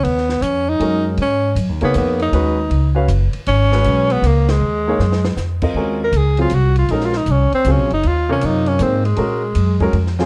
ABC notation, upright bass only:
X:1
M:3/4
L:1/8
Q:"Swing" 1/4=158
K:C#mix
V:1 name="Upright bass" clef=bass
D,,2 E,,2 F,,2 | G,,2 (3F,, D,, C,, E,,2 | D,,2 C,,2 F,,, z | G,,,2 B,,,2 C,,2 |
D,,2 F,,2 E,,2 | [K:Ebdor] E,,2 D,,2 C,,2 | B,,,2 C,, z (3D,, B,,, G,,, | E,,2 G,,2 A,,2 |
B,,2 G,,2 F,,2 |]